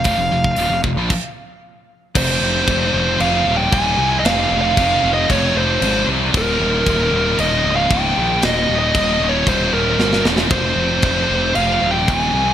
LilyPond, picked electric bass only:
\new Staff \with { instrumentName = "Picked electric bass" } { \clef bass \time 4/4 \key f \minor \tempo 4 = 115 f,,16 f,,16 f,,8 ees,,16 f,,16 f,,16 bes,,16 r2 | f,,8 f,,8 f,,8 f,,8 f,,8 ees,,8 ees,,8 c,8 | f,,8 f,,8 f,,8 f,,8 f,,8 f,,8 aes,,8 c,8 | ees,,8 ees,,8 ees,,8 ees,,8 ees,,8 des,,8 des,,8 bes,,8 |
ees,,8 ees,,8 ees,,8 ees,,8 ees,,8 ees,,8 g,,8 e,,8 | f,,8 f,,8 f,,8 f,,8 f,,8 ees,,8 ees,,8 c,8 | }